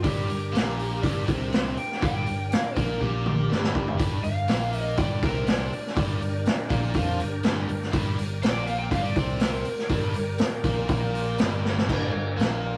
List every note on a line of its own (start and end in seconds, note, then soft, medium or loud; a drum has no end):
0.03 0.28 G1 loud
0.03 0.27 G2 medium
0.03 0.29 G3 medium
0.03 3.96 D4 medium
0.03 1.49 G4 loud
0.03 3.96 G4 medium
0.03 3.97 A#4 medium
0.03 kick loud
0.03 open hi-hat medium
0.28 0.53 G1 medium
0.28 0.49 G2 medium
0.28 open hi-hat medium
0.52 1.00 A#1 medium
0.52 1.02 A#2 medium
0.52 1.02 A#3 loud
0.52 open hi-hat medium
0.56 snare medium
0.79 open hi-hat medium
1.01 1.27 G1 medium
1.01 1.27 G2 medium
1.01 1.27 G3 medium
1.01 kick medium
1.01 open hi-hat medium
1.26 1.74 C2 medium
1.26 1.76 C3 medium
1.26 1.76 C4 medium
1.26 kick loud
1.26 open hi-hat medium
1.52 snare loud
1.52 open hi-hat medium
1.76 2.02 G5 medium
1.76 muted overdriven electric guitar stroke medium
1.76 muted fingered electric bass stroke soft
1.76 open hi-hat medium
1.92 snare soft
2.01 2.25 G1 loud
2.01 2.26 G2 medium
2.01 2.26 G3 medium
2.01 2.51 G5 loud
2.01 kick loud
2.01 open hi-hat medium
2.26 2.50 G1 medium
2.26 2.47 G2 medium
2.26 open hi-hat medium
2.52 2.65 F5 medium
2.52 snare loud
2.52 open hi-hat medium
2.63 2.76 D5 medium
2.76 2.99 A#1 loud
2.76 2.99 A#2 medium
2.76 3.00 A#3 medium
2.76 3.00 A#4 medium
2.76 kick loud
2.76 open hi-hat medium
3.01 3.47 A#1 medium
3.01 3.49 A#2 medium
3.01 3.50 A#3 loud
3.01 3.97 G4 medium
3.01 kick medium
3.26 mid tom medium
3.49 3.96 G1 medium
3.49 3.97 G2 medium
3.49 3.97 G3 medium
3.49 snare medium
3.64 snare medium
3.75 kick loud
3.88 floor tom medium
3.98 4.23 G1 loud
3.98 4.22 G2 medium
3.98 4.23 G3 loud
3.98 7.90 D4 medium
3.98 7.90 G4 medium
3.98 7.90 A#4 medium
3.98 kick loud
3.98 open hi-hat medium
4.23 4.47 G1 medium
4.23 4.43 G2 medium
4.23 4.80 F5 loud
4.23 open hi-hat medium
4.48 4.94 A#1 medium
4.48 4.97 A#2 medium
4.48 4.98 A#3 loud
4.48 snare medium
4.48 open hi-hat medium
4.73 open hi-hat medium
4.80 4.96 D#5 loud
4.96 5.21 G1 loud
4.96 5.21 G2 medium
4.96 5.22 G3 loud
4.96 5.22 D5 medium
4.96 kick loud
4.96 open hi-hat medium
5.22 5.69 C2 medium
5.22 5.71 C3 medium
5.22 5.71 C4 loud
5.22 5.47 A#4 medium
5.22 kick loud
5.22 open hi-hat medium
5.47 6.92 D5 loud
5.47 snare loud
5.47 open hi-hat medium
5.71 muted overdriven electric guitar stroke medium
5.71 muted fingered electric bass stroke soft
5.71 open hi-hat medium
5.87 snare soft
5.96 6.19 G1 loud
5.96 6.20 G2 medium
5.96 6.21 G3 medium
5.96 kick loud
5.96 open hi-hat medium
6.19 6.43 G1 medium
6.19 6.41 G2 medium
6.19 open hi-hat medium
6.45 snare loud
6.45 open hi-hat medium
6.69 6.93 A#1 medium
6.69 6.94 A#2 medium
6.69 6.94 A#3 medium
6.69 kick loud
6.69 open hi-hat medium
6.94 7.18 F2 medium
6.94 7.19 F3 medium
6.94 7.19 F4 loud
6.94 kick loud
6.94 open hi-hat medium
7.19 7.43 G1 medium
7.19 7.39 G2 medium
7.19 open hi-hat medium
7.43 7.67 G1 loud
7.43 7.67 G2 medium
7.43 7.68 G3 medium
7.43 snare loud
7.43 open hi-hat medium
7.68 7.92 G1 medium
7.68 7.89 G2 medium
7.68 open hi-hat medium
7.82 snare soft
7.92 8.16 G1 loud
7.92 8.17 G2 medium
7.92 8.17 G3 medium
7.92 11.84 G4 medium
7.92 11.84 A#4 medium
7.92 11.83 D5 medium
7.92 kick loud
7.92 open hi-hat medium
8.17 8.41 G1 medium
8.17 8.38 G2 medium
8.17 open hi-hat medium
8.41 8.88 A#1 medium
8.41 8.91 A#2 medium
8.41 8.92 A#3 loud
8.41 8.67 D5 loud
8.41 snare medium
8.41 open hi-hat medium
8.67 8.79 F5 medium
8.67 open hi-hat medium
8.79 8.91 G5 medium
8.91 9.15 G1 loud
8.91 9.16 G2 medium
8.91 9.16 G3 loud
8.91 9.04 F5 medium
8.91 kick loud
8.91 open hi-hat medium
9.03 9.39 D5 medium
9.16 9.62 C2 medium
9.16 9.65 C3 medium
9.16 9.66 C4 loud
9.16 kick loud
9.16 open hi-hat medium
9.40 10.85 A#4 loud
9.40 snare loud
9.40 open hi-hat medium
9.65 muted fingered electric bass stroke soft
9.65 muted overdriven electric guitar stroke medium
9.65 open hi-hat medium
9.78 snare soft
9.89 10.13 G1 loud
9.89 10.14 G2 medium
9.89 10.15 G3 medium
9.89 kick loud
9.89 open hi-hat medium
10.13 10.38 G1 medium
10.13 10.35 G2 medium
10.13 open hi-hat medium
10.38 snare loud
10.38 open hi-hat medium
10.64 10.87 A#1 loud
10.64 10.87 A#2 medium
10.64 10.87 A#3 loud
10.64 kick loud
10.64 open hi-hat medium
10.88 11.35 A#1 loud
10.88 11.37 A#2 medium
10.88 11.38 A#3 medium
10.88 kick loud
10.88 open hi-hat medium
11.15 open hi-hat medium
11.38 11.85 G1 loud
11.38 11.87 G2 medium
11.38 11.87 G3 loud
11.38 snare loud
11.38 open hi-hat medium
11.65 snare medium
11.78 snare medium
11.86 12.12 G1 medium
11.86 12.11 G2 medium
11.86 12.12 G3 medium
11.86 12.77 A#3 medium
11.86 12.77 D4 medium
11.86 12.77 G4 medium
11.86 12.77 A#4 medium
11.86 kick loud
11.86 crash loud
12.12 12.35 G1 medium
12.12 12.32 G2 medium
12.37 12.77 A#1 medium
12.37 12.77 A#2 medium
12.37 12.77 A#3 medium
12.37 snare medium
12.37 open hi-hat soft